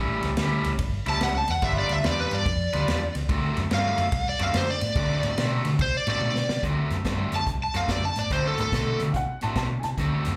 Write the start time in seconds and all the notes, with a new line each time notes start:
Already playing: A1 A2 G3 C#4 E4
0.23 C#2, snare, ride
0.37 D2 A2 G3 C#4 E4, snare, ride
0.64 C#2, snare, ride
0.79 G1, kick, ride
1.06 C#2 A2 G3 C#4 E4 A5, snare, ride
1.21 C#2 F#5, snare, ride
1.37 A5
1.48 E2 F#5, snare, ride
1.62 G1 G3 D4 F4 B4 E5, kick, ride
1.79 D5
1.89 D2 E5, snare, ride
2.04 E2 G3 D4 F4 B4 D5, snare, ride
2.21 B4
2.31 G2 D5, snare, ride
2.46 F2, kick, ride
2.73 D2 G3 D4 F4 B4, snare, ride
2.88 E2, snare, ride
3.15 C#2, snare, ride
3.29 D2 D3 A3 C4 F#4, kick, ride
3.57 F#2, snare, ride
3.71 G2 D3 A3 C4 F#4 F5, snare, ride
3.98 F#2, snare, ride
4.12 C2, kick, ride
4.29 D5
4.39 F#2 D3 A3 C4 F#4 F5, snare, ride
4.54 F#2 C5, snare, ride
4.70 D5
4.81 A2, snare, ride
4.95 D2 D3 A3 C4 F#4, kick, ride
5.23 A2, snare, ride
5.38 B2 D3 A3 C4 F#4, snare, ride
5.65 D3, snare, ride
5.79 C3 C5, kick, ride
5.97 D5
6.07 A2 D3 A3 C4 F#4 D5, snare, ride
6.21 B2, high tom
6.36 snare
6.49 C3, snare
6.63 D2 D3 A3 C4 F#4, kick, snare, closed hi-hat
6.90 F#2, snare, closed hi-hat
7.05 G2 D3 A3 C4 F#4, kick, snare, closed hi-hat
7.32 F#2 A5, snare, closed hi-hat
7.47 C2, kick, snare, closed hi-hat
7.63 A5
7.74 F#2 D3 A3 C4 F#4 F5, snare, closed hi-hat
7.88 F#2 D5, kick, snare, closed hi-hat
8.05 A5
8.16 A2 D5, snare, closed hi-hat
8.30 D2 D3 A3 C4 F#4 C5, kick, snare, closed hi-hat
8.47 A4
8.58 A2 A4, snare, closed hi-hat
8.72 B2 D3 A3 C4 F#4, kick, snare, closed hi-hat
8.99 D3, snare, closed hi-hat
9.12 C3 F5, kick, snare, closed hi-hat
9.16 F#5
9.41 A2 D3 A3 C4 F#4 A5, snare, closed hi-hat
9.55 B2 A5, kick, snare, closed hi-hat
9.79 G#5, closed hi-hat
9.83 C3 A5, snare
9.97 D2 D3 A3 C4 F#4, kick, snare, closed hi-hat
10.25 F#2, snare, closed hi-hat